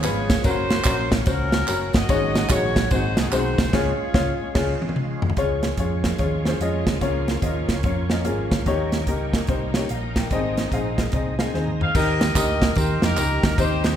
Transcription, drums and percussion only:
0.03 clap, ride, tambourine
0.30 kick, snare, ride, tambourine
0.44 kick, ride, tambourine
0.70 snare, ride, tambourine
0.84 kick, clap, ride, tambourine
1.12 kick, snare, ride, tambourine
1.26 kick, ride, tambourine
1.52 snare, ride, tambourine
1.68 clap, ride, tambourine
1.93 kick, snare, ride, tambourine
2.09 kick, ride, tambourine
2.35 snare, ride, tambourine
2.49 kick, clap, ride, tambourine
2.76 kick, snare, ride, tambourine
2.91 kick, ride, tambourine
3.17 snare, ride, tambourine
3.32 clap, ride, tambourine
3.58 kick, snare, ride, tambourine
3.73 kick, snare, crash
4.14 kick, snare
4.55 kick, snare, crash
4.82 high tom
4.89 high tom
4.96 mid tom
5.22 floor tom
5.30 floor tom
5.37 kick, closed hi-hat
5.63 snare, closed hi-hat
5.77 kick, closed hi-hat
6.04 kick, snare, closed hi-hat
6.18 kick, closed hi-hat
6.45 snare, closed hi-hat
6.61 closed hi-hat
6.87 kick, snare, closed hi-hat
7.01 kick, closed hi-hat
7.28 snare, closed hi-hat
7.42 kick, closed hi-hat
7.69 kick, snare, closed hi-hat
7.83 kick, closed hi-hat
8.10 snare, closed hi-hat
8.25 closed hi-hat
8.51 kick, snare, closed hi-hat
8.66 kick, closed hi-hat
8.92 snare, closed hi-hat
9.07 kick, closed hi-hat
9.33 kick, snare, closed hi-hat
9.47 kick, closed hi-hat
9.74 snare, closed hi-hat
9.89 closed hi-hat
10.16 kick, snare, closed hi-hat
10.31 kick, closed hi-hat
10.57 snare, closed hi-hat
10.72 kick, closed hi-hat
10.98 kick, snare, closed hi-hat
11.12 kick, closed hi-hat
11.39 snare, closed hi-hat
11.54 snare
11.67 mid tom
11.81 floor tom
11.95 kick, crash, tambourine
12.21 snare, ride, tambourine
12.35 kick, clap, ride, tambourine
12.62 kick, snare, ride, tambourine
12.75 kick, ride, tambourine
13.02 snare, ride, tambourine
13.17 clap, ride, tambourine
13.43 kick, snare, ride, tambourine
13.58 kick, ride, tambourine
13.84 snare, ride, tambourine

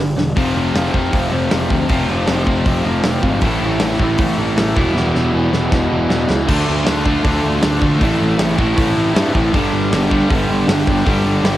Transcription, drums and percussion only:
0.18 snare
0.37 kick, open hi-hat
0.75 snare, open hi-hat
0.94 kick
1.13 kick, open hi-hat
1.51 snare, open hi-hat
1.70 kick
1.89 kick, open hi-hat
2.27 snare, open hi-hat
2.47 kick
2.66 kick, open hi-hat
3.03 snare, open hi-hat
3.23 kick
3.41 kick, open hi-hat
3.80 snare, open hi-hat
4.00 kick
4.18 kick, open hi-hat
4.57 snare, open hi-hat
4.77 kick
4.97 snare
5.15 snare
5.53 snare
5.72 kick, snare
6.10 snare
6.30 snare
6.49 kick, crash
6.86 snare, open hi-hat
7.06 kick
7.24 kick, open hi-hat
7.62 snare, open hi-hat
7.82 kick
8.01 kick, open hi-hat
8.39 snare, open hi-hat
8.59 kick
8.78 kick, open hi-hat
9.16 snare, open hi-hat
9.35 kick
9.54 kick, open hi-hat
9.92 snare, open hi-hat
10.11 kick
10.30 kick, open hi-hat
10.69 snare, open hi-hat
10.87 kick
11.07 kick, open hi-hat
11.45 snare, open hi-hat

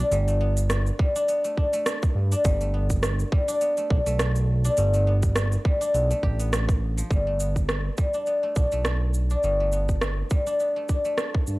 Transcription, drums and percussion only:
0.12 open hi-hat, shaker
0.28 open hi-hat, shaker
0.57 open hi-hat, shaker
0.70 cross-stick, open hi-hat, shaker
0.86 shaker
0.99 kick
1.16 open hi-hat, shaker
1.28 open hi-hat, shaker
1.44 open hi-hat, shaker
1.57 kick
1.73 open hi-hat, shaker
1.86 cross-stick, open hi-hat, shaker
2.03 kick, open hi-hat, shaker
2.32 open hi-hat, shaker
2.45 kick, open hi-hat, shaker
2.61 open hi-hat, shaker
2.90 kick, open hi-hat, shaker
3.03 cross-stick, open hi-hat, shaker
3.19 shaker
3.32 kick
3.48 open hi-hat, shaker
3.61 open hi-hat, shaker
3.77 open hi-hat, shaker
3.90 kick
4.06 open hi-hat, shaker
4.19 cross-stick, open hi-hat, shaker
4.35 open hi-hat, shaker
4.64 open hi-hat, shaker
4.77 open hi-hat, shaker
4.94 open hi-hat, shaker
5.22 kick, open hi-hat, shaker
5.36 cross-stick, open hi-hat, shaker
5.52 open hi-hat, shaker
5.65 kick
5.81 open hi-hat, shaker
5.95 open hi-hat, shaker
6.11 open hi-hat, shaker
6.23 kick
6.40 open hi-hat, shaker
6.53 cross-stick, open hi-hat, shaker
6.69 kick, open hi-hat, shaker
6.98 open hi-hat, shaker
7.11 kick, shaker
7.40 shaker
7.56 kick, shaker
7.69 cross-stick, shaker
7.98 kick, shaker
8.14 shaker
8.26 shaker
8.56 kick, shaker
8.72 shaker
8.85 cross-stick, shaker
9.14 shaker
9.30 shaker
9.43 shaker
9.72 shaker
9.89 kick, shaker
10.01 cross-stick, shaker
10.30 kick, shaker
10.47 shaker
10.60 shaker
10.89 kick, shaker
11.05 shaker
11.18 cross-stick, shaker
11.34 kick
11.47 shaker

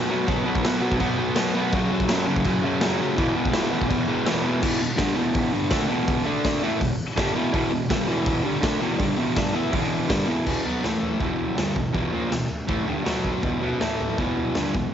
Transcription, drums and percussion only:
0.28 kick, crash
0.55 kick
0.65 snare, crash
0.91 kick
1.00 kick, crash
1.36 snare, crash
1.72 kick, crash
2.00 kick
2.09 snare, crash
2.36 kick
2.44 kick, crash
2.81 snare, crash
3.18 kick, crash
3.46 kick
3.53 snare, crash
3.82 kick
3.91 kick, crash
4.26 snare, crash
4.63 kick, crash
4.98 kick, snare, open hi-hat
5.34 kick, open hi-hat
5.71 kick, snare, open hi-hat
6.08 kick, open hi-hat
6.45 kick, snare, open hi-hat
6.81 kick, open hi-hat
7.17 kick, snare, open hi-hat
7.54 kick, open hi-hat
7.90 kick, snare, open hi-hat
8.26 kick, open hi-hat
8.63 kick, snare, open hi-hat
9.00 kick, open hi-hat
9.36 kick, snare, open hi-hat
9.73 kick, open hi-hat
10.10 kick, snare, open hi-hat
10.47 kick, floor tom, crash
10.66 floor tom
10.84 snare, floor tom
11.03 floor tom
11.21 kick, floor tom
11.40 floor tom
11.58 snare, floor tom
11.76 kick, floor tom
11.94 kick, floor tom
12.14 floor tom
12.32 snare, floor tom
12.51 floor tom
12.69 kick, floor tom
12.88 floor tom
13.06 snare, floor tom
13.24 kick, floor tom
13.43 kick, floor tom
13.62 floor tom
13.81 snare, floor tom
14.00 floor tom
14.18 kick, floor tom
14.37 floor tom
14.55 snare, floor tom
14.74 kick, floor tom

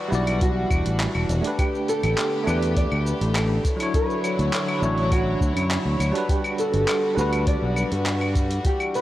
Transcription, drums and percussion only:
0.13 shaker
0.27 open hi-hat, claves, shaker
0.41 kick, open hi-hat, shaker
0.70 kick, claves, shaker
0.86 open hi-hat, shaker
1.00 clap, open hi-hat, shaker
1.15 claves
1.29 open hi-hat, shaker
1.45 open hi-hat, shaker
1.59 kick, open hi-hat, claves, shaker
1.75 shaker
1.88 open hi-hat, shaker
2.03 open hi-hat, claves, shaker
2.18 clap, open hi-hat, shaker
2.47 claves, shaker
2.63 open hi-hat, shaker
2.76 kick, open hi-hat, shaker
2.92 claves
3.07 shaker
3.21 open hi-hat, shaker
3.35 clap, open hi-hat, claves, shaker
3.65 kick, open hi-hat, shaker
3.80 open hi-hat, claves, shaker
3.94 kick, open hi-hat, shaker
4.10 shaker
4.24 open hi-hat, claves, shaker
4.39 open hi-hat, shaker
4.53 clap, open hi-hat, shaker
4.68 claves
4.83 shaker
4.98 open hi-hat, shaker
5.12 kick, open hi-hat, claves, shaker
5.41 kick, shaker
5.57 open hi-hat, claves, shaker
5.71 clap, open hi-hat, shaker
6.00 open hi-hat, claves, shaker
6.15 open hi-hat, shaker
6.29 kick, open hi-hat, shaker
6.44 claves, shaker
6.59 open hi-hat, shaker
6.74 open hi-hat, shaker
6.88 clap, open hi-hat, claves, shaker
7.18 shaker
7.33 open hi-hat, claves, shaker
7.47 kick, open hi-hat, shaker
7.76 claves, shaker
7.91 open hi-hat, shaker
8.06 clap, open hi-hat, shaker
8.21 claves
8.35 kick, open hi-hat, shaker
8.50 open hi-hat, shaker
8.64 kick, open hi-hat, shaker
8.80 claves, shaker
8.94 open hi-hat, shaker

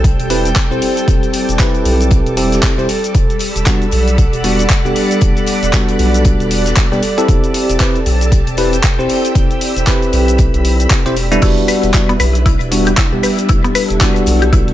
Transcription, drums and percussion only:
0.04 kick, closed hi-hat, shaker
0.20 closed hi-hat, shaker
0.30 closed hi-hat, open hi-hat
0.45 closed hi-hat, shaker
0.56 kick, snare, clap, closed hi-hat, shaker
0.72 shaker
0.82 open hi-hat
0.97 closed hi-hat, shaker
1.08 kick, closed hi-hat, shaker
1.23 closed hi-hat, shaker
1.33 closed hi-hat, open hi-hat
1.49 closed hi-hat, shaker
1.59 kick, snare, clap, closed hi-hat, shaker
1.74 closed hi-hat, shaker
1.85 closed hi-hat, open hi-hat
2.01 closed hi-hat, shaker
2.11 kick, closed hi-hat, shaker
2.26 closed hi-hat, shaker
2.37 closed hi-hat, open hi-hat
2.52 snare, closed hi-hat, shaker
2.62 kick, snare, clap, closed hi-hat, shaker
2.78 snare, shaker
2.89 snare, closed hi-hat, open hi-hat
3.04 closed hi-hat, shaker
3.14 kick, closed hi-hat, shaker
3.30 closed hi-hat, shaker
3.39 closed hi-hat, open hi-hat
3.56 closed hi-hat, shaker
3.66 kick, snare, clap, closed hi-hat, shaker
3.82 closed hi-hat, shaker
3.91 closed hi-hat, open hi-hat
4.08 closed hi-hat, shaker
4.18 kick, closed hi-hat, shaker
4.33 closed hi-hat, shaker
4.44 closed hi-hat, open hi-hat
4.59 closed hi-hat, shaker
4.70 kick, snare, clap, closed hi-hat, shaker
4.86 shaker
4.96 open hi-hat
5.11 closed hi-hat, shaker
5.21 kick, closed hi-hat, shaker
5.37 closed hi-hat, shaker
5.47 closed hi-hat, open hi-hat
5.63 closed hi-hat, shaker
5.73 kick, snare, clap, closed hi-hat, shaker
5.88 closed hi-hat, shaker
5.99 closed hi-hat, open hi-hat
6.14 closed hi-hat, shaker
6.25 kick, closed hi-hat, shaker
6.40 closed hi-hat, shaker
6.51 closed hi-hat, open hi-hat
6.66 snare, closed hi-hat, shaker
6.76 kick, snare, clap, closed hi-hat, shaker
6.92 snare, shaker
7.03 snare, closed hi-hat, open hi-hat
7.18 closed hi-hat, shaker
7.28 kick, closed hi-hat, shaker
7.44 closed hi-hat, shaker
7.54 closed hi-hat, open hi-hat
7.70 closed hi-hat, shaker
7.79 kick, snare, clap, closed hi-hat, shaker
7.95 closed hi-hat, shaker
8.06 closed hi-hat, open hi-hat
8.21 closed hi-hat, shaker
8.32 kick, closed hi-hat, shaker
8.47 closed hi-hat, shaker
8.57 closed hi-hat, open hi-hat
8.73 closed hi-hat, shaker
8.83 kick, snare, clap, closed hi-hat, shaker
9.00 shaker
9.09 open hi-hat
9.25 closed hi-hat, shaker
9.35 kick, closed hi-hat, shaker
9.51 closed hi-hat, shaker
9.61 closed hi-hat, open hi-hat
9.76 closed hi-hat, shaker
9.87 kick, snare, clap, closed hi-hat, shaker
10.02 closed hi-hat, shaker
10.13 closed hi-hat, open hi-hat
10.28 closed hi-hat, shaker
10.38 kick, closed hi-hat, shaker
10.54 closed hi-hat, shaker
10.65 open hi-hat
10.80 closed hi-hat, shaker
10.90 kick, snare, clap, closed hi-hat, shaker
11.06 snare, closed hi-hat, shaker
11.16 snare, closed hi-hat, open hi-hat
11.32 closed hi-hat, shaker
11.42 kick, closed hi-hat, crash, shaker
11.58 closed hi-hat, shaker
11.68 closed hi-hat, open hi-hat, shaker
11.83 closed hi-hat, shaker
11.93 kick, snare, clap, closed hi-hat, shaker
12.09 closed hi-hat, shaker
12.20 closed hi-hat, open hi-hat, shaker
12.35 closed hi-hat, shaker
12.46 kick, closed hi-hat, shaker
12.60 closed hi-hat
12.72 closed hi-hat, open hi-hat, shaker
12.86 closed hi-hat, shaker
12.97 kick, snare, clap, closed hi-hat, shaker
13.23 open hi-hat, shaker
13.38 closed hi-hat, shaker
13.49 kick, closed hi-hat, shaker
13.65 closed hi-hat, shaker
13.75 closed hi-hat, open hi-hat, shaker
13.90 closed hi-hat, shaker
14.01 kick, snare, clap, closed hi-hat, shaker
14.16 closed hi-hat, shaker
14.26 closed hi-hat, open hi-hat, shaker
14.42 closed hi-hat, shaker
14.53 kick, closed hi-hat, shaker
14.68 closed hi-hat

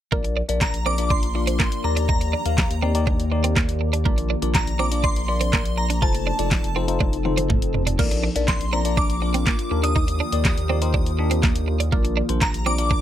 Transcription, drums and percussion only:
0.12 kick
0.24 closed hi-hat
0.49 closed hi-hat
0.61 kick, snare, clap
0.74 closed hi-hat
0.98 closed hi-hat
1.10 kick
1.23 closed hi-hat
1.47 closed hi-hat
1.60 kick, snare, clap
1.72 closed hi-hat
1.97 closed hi-hat
2.09 kick
2.21 closed hi-hat
2.46 closed hi-hat
2.58 kick, snare, clap
2.71 closed hi-hat
2.95 closed hi-hat
3.07 kick
3.20 closed hi-hat
3.44 closed hi-hat
3.57 kick, snare, clap
3.69 closed hi-hat
3.93 closed hi-hat
4.06 kick
4.18 closed hi-hat
4.42 closed hi-hat
4.55 kick, snare, clap
4.67 closed hi-hat
4.92 closed hi-hat
5.04 kick
5.16 closed hi-hat
5.41 closed hi-hat
5.53 kick, snare, clap
5.65 closed hi-hat
5.90 closed hi-hat
6.02 kick
6.15 closed hi-hat
6.39 closed hi-hat
6.51 kick, snare, clap
6.64 closed hi-hat
6.88 closed hi-hat
7.00 kick, high tom
7.13 closed hi-hat
7.25 mid tom
7.38 closed hi-hat, mid tom
7.50 kick, mid tom
7.62 closed hi-hat
7.74 floor tom
7.87 closed hi-hat, floor tom
7.99 kick, crash
8.11 closed hi-hat
8.36 closed hi-hat
8.48 kick, snare, clap
8.61 closed hi-hat
8.85 closed hi-hat
8.97 kick
9.10 closed hi-hat
9.34 closed hi-hat
9.47 kick, snare, clap
9.59 closed hi-hat
9.84 closed hi-hat
9.96 kick
10.08 closed hi-hat
10.32 closed hi-hat
10.45 kick, snare, clap
10.58 closed hi-hat
10.82 closed hi-hat
10.94 kick
11.06 closed hi-hat
11.31 closed hi-hat
11.43 kick, snare, clap
11.56 closed hi-hat
11.80 closed hi-hat
11.92 kick
12.05 closed hi-hat
12.29 closed hi-hat
12.42 kick, snare, clap
12.54 closed hi-hat
12.78 closed hi-hat
12.91 kick

